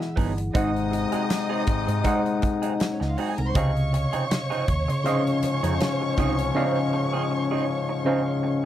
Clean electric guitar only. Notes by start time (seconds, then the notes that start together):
0.16 F#3 B3 D#4 G#4
0.38 muted clean electric guitar stroke
0.54 F#3 C4 D#4 G#4
0.91 muted clean electric guitar stroke
1.12 F#3 C4 D#4 G#4
1.29 muted clean electric guitar stroke
1.49 F#3 C4 D#4 G#4
1.67 muted clean electric guitar stroke
1.87 muted clean electric guitar stroke
2.04 F#3 C4 D#4 G#4
2.42 muted clean electric guitar stroke
2.62 F#3 C4 D#4 G#4
2.79 muted clean electric guitar stroke
3.00 muted clean electric guitar stroke
3.18 F#3 C4 D#4 G#4
3.55 F3 C4 D#4 G#4
3.93 muted clean electric guitar stroke
4.13 F3 C4 D#4 G#4
4.30 muted clean electric guitar stroke
4.50 F3 C4 D#4 G#4
4.88 muted clean electric guitar stroke
5.06 F3 C4 D#4 G#4
5.43 muted clean electric guitar stroke
5.63 F3 C4 D#4 G#4
5.80 muted clean electric guitar stroke
6.01 muted clean electric guitar stroke
6.18 F3 C4 D#4 G#4
6.39 muted clean electric guitar stroke
6.55 F3 C4 D#4 G#4
6.93 muted clean electric guitar stroke
7.13 F3 C4 D#4 G#4
7.31 muted clean electric guitar stroke
7.51 F3 C4 D#4 G#4
7.69 muted clean electric guitar stroke
7.89 muted clean electric guitar stroke
8.06 F3 C4 D#4 G#4
8.43 muted clean electric guitar stroke